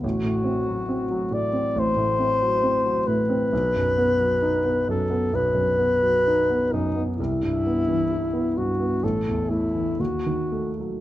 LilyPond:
<<
  \new Staff \with { instrumentName = "Alto saxophone" } { \time 4/4 \key b \phrygian \tempo 4 = 66 fis'4. d''8 c''4. b'8~ | b'4. a'8 b'4. dis'8 | e'4. fis'8 a'8 e'8 fis'8 r8 | }
  \new Staff \with { instrumentName = "Grand piano" } { \clef bass \time 4/4 \key b \phrygian a,,16 a,16 c'16 fis16 c'16 fis16 a,16 c'16 a,,16 a,16 c'16 fis16 c'16 fis16 a,16 c'16 | b,,16 fis,16 b16 fis16 dis'16 b16 fis,16 b16 b,,16 fis,16 b16 fis16 dis'16 b16 fis,16 b16 | c,16 g,16 b16 e16 e'16 b16 g,16 b16 a,,16 e,16 a16 e16 dis,16 dis16 a16 fis16 | }
>>